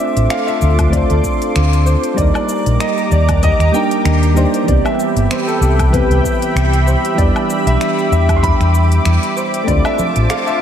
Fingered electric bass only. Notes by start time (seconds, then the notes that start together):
0.16 A1
0.62 D2
1.10 D2
1.56 D2
2.18 D#2
2.66 A#1
3.11 D#2
3.59 D#2
4.05 D#2
4.68 C2
5.16 G1
5.61 C2
6.10 C2
6.55 C2
7.18 E2
7.66 B1
8.12 E2
8.60 E2
9.05 E2
9.68 D2
10.16 A1